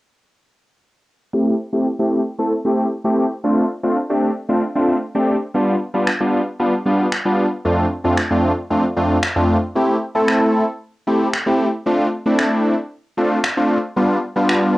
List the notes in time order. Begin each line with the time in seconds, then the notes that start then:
1.33 A3 C4 E4 G4
1.73 A3 C4 E4 G4
1.99 A3 C4 E4 G4
2.38 A3 C4 E4 A4
2.65 A3 C4 E4 G4
3.04 A3 C4 E4 G4
3.44 A3 C4 D4 F4
3.83 A3 C4 D4 F4
4.10 A3 C4 D4 G4
4.49 A3 C4 D4 F4
4.75 A3 C4 D4 F4
5.15 A3 C4 D4 G4
5.54 G3 B3 D4 F4
5.94 G3 B3 D4 F4
6.07 finger snap
6.20 G3 B3 D4 F4
6.59 G3 B3 D4 F4
6.86 G3 B3 D4 F4
7.12 finger snap
7.25 G3 B3 D4 F4
7.65 F2 A3 C4 D4 F4
8.04 F2 A3 C4 D4 F4
8.18 finger snap
8.30 F2 A3 C4 D4 F4
8.70 F2 A3 C4 D4 F4
8.96 F2 A3 C4 D4 F4
9.23 finger snap
9.36 F2 A3 C4 D4 F4
9.75 A3 C4 E4 G4
10.15 A3 C4 E4 A4
10.28 finger snap
11.07 A3 C4 E4 G4
11.33 finger snap
11.46 A3 C4 E4 G4
11.86 A3 C4 D4 F4
12.26 A3 C4 D4 E4
12.39 finger snap
13.18 A3 C4 D4 F4
13.44 finger snap
13.57 A3 C4 D4 F4
13.96 G3 B3 D4 F4
14.36 G3 B3 D4 F4
14.49 finger snap